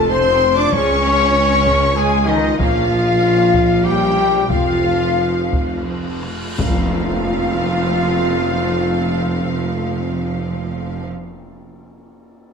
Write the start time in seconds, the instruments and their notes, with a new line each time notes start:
Already playing: double bass section F1, tuba F1, cello section A3, viola section A3 F4, french horn section A4
0.09 viola section F3 C4, cello section C4, trumpet C5, french horn section C5, violin section C6, flute section C6
0.42 viola section A3 F4
0.56 cello section D4, french horn section D5, trumpet D5, violin section D6, flute section D6
0.61 violin section D6
0.71 double bass section C#2, tuba C#2, viola section G#3 C#4, cello section C#4, french horn section C#5, trumpet C#5, flute section C#6, violin section C#6, taiko
0.75 violin section C#6
1.04 viola section F3 F4
1.35 viola section G#3 C#4
1.66 viola section F3 F4, taiko
1.96 viola section G#3 C#4, cello section G#3, french horn section G#4, trumpet G#4, flute section G#5, violin section G#5
2.27 cello section D#3, viola section F3 F4, french horn section D#4, trumpet D#4, violin section D#5, flute section D#5
2.58 double bass section A#1, tuba A#1, cello section F3, viola section A#3 C#4, trumpet F4, french horn section F4, flute section F5, violin section F5, taiko
2.89 viola section F3 A#3
3.22 viola section A#3 C#4
3.53 viola section F3 A#3, taiko
3.84 cello section G3, viola section A#3 C#4, french horn section G4, trumpet G4, violin section G5, flute section G5
4.18 viola section F3 A#3
4.48 double bass section F1, tuba F1, cello section F3, viola section F3 C4, french horn section F4, trumpet F4, violin section F5, flute section F5, taiko, cymbal swell
4.83 viola section A3 F4
5.17 viola section F3 C4
5.51 viola section A3 F4, taiko
5.86 viola section F3 C4
6.22 viola section A3 F4, taiko rim
6.56 double bass section F1, tuba F1, cello section F3, viola section A3 C4, trumpet F4, french horn section F4, violin section F5, flute section F5, taiko, tam-tam, impact